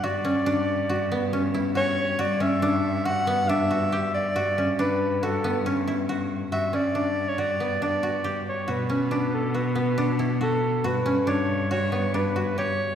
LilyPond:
<<
  \new Staff \with { instrumentName = "Soprano saxophone" } { \time 5/4 \key g \lydian \tempo 4 = 139 d''2. r4 cis''4 | d''8 e''4. fis''4 e''4. d''8~ | d''4 b'4 a'4 r2 | e''8 d''4~ d''16 cis''16 d''4 d''4. cis''8 |
b'4. a'8 b'4. r8 a'4 | b'4 cis''4 cis''4 b'4 cis''4 | }
  \new Staff \with { instrumentName = "Koto" } { \time 5/4 \key g \lydian fis'8 cis'8 d'4 fis'8 b8 cis'8 e'8 fis'4 | fis'8 cis'8 d'4 fis'8 b8 d'8 fis'8 g'4 | fis'8 cis'8 d'4 fis'8 b8 cis'8 e'8 fis'4 | fis'8 cis'8 d'4 fis'8 b8 d'8 fis'8 g'4 |
fis'8 cis'8 d'4 fis'8 b8 d'8 e'8 fis'4 | fis'8 cis'8 d'4 fis'8 b8 d'8 fis'8 g'4 | }
  \new Staff \with { instrumentName = "Cello" } { \clef bass \time 5/4 \key g \lydian g,1~ g,4 | g,1~ g,4 | g,1~ g,4 | g,1~ g,4 |
b,1~ b,4 | g,1~ g,4 | }
>>